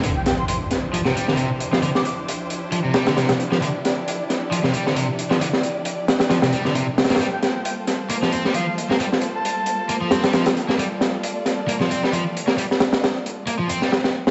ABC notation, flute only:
X:1
M:4/4
L:1/16
Q:"Swing 16ths" 1/4=134
K:Dm
V:1 name="Flute"
z g g c' c' z8 z3 | z d' d' z12 z | z16 | z16 |
z g g g g z6 z f2 z2 | z3 a6 z6 z | z16 | z16 |]